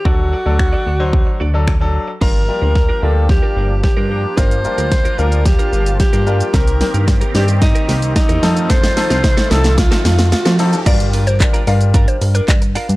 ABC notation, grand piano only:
X:1
M:4/4
L:1/16
Q:1/4=111
K:Gm
V:1 name="Grand piano"
[^F,DA]2 z [F,DA]3 z [F,Dc]3 z [F,DA] z [F,DA]2 z | [G,FB] z [G,FB]3 z [G,FB]6 z4 | [G,FB] z [G,FB]3 z [G,FB]6 z2 [G,FB] z | [E,CB] z [E,CB]3 z [E,Cd]6 z2 [F,EA]2- |
[F,EA] z [F,EA]3 z [F,EA]6 z2 [F,EA] z | [G,DFB]3 z [G,DFB] z [G,DFB]6 z4 |]